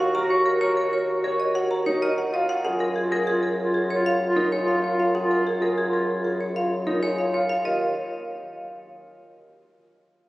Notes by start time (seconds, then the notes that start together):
Already playing: D#2 F#4
0.00 F#5
0.15 A#4 A#5
0.23 F#4
0.30 C#5
0.46 A#4
0.55 F#4
0.61 A#4 C#5
0.77 A#4
0.87 F#4
0.93 C#5
1.19 F#4
1.24 A#4 C#5
1.40 D#5
1.52 F#4 F#5
1.71 A#5
1.84 D#4 F#4 C#5
2.02 A#4 D#5
2.17 F#4 F#5
2.33 F4 D#5
2.49 F#5
2.64 F#2 F4 G#4 F#5
2.80 A#4
2.96 F4 G#4
3.11 G#4 A#4
3.27 F4 G#4
3.43 A#4
3.62 F4
3.74 G#4
3.90 C#5
3.95 F4
4.06 F5
4.26 F4
4.36 D#4 A#4
4.52 G#4 C#5
4.59 F4
4.68 F5
4.83 F4 C#5
4.91 F4
5.00 F5
5.15 G#4 F#5
5.23 F4
5.31 A#4
5.47 G#4
5.55 F4
5.61 G#4 A#4
5.78 G#4
5.87 F4
5.93 A#4
6.20 F4
6.25 G#4
6.41 C#5
6.52 F4
6.56 F5
6.85 D#4 F4 A#4
7.02 G#4 C#5
7.17 F4 F5
7.33 F4 C#5
7.50 F5
7.64 D#2 F4 D#5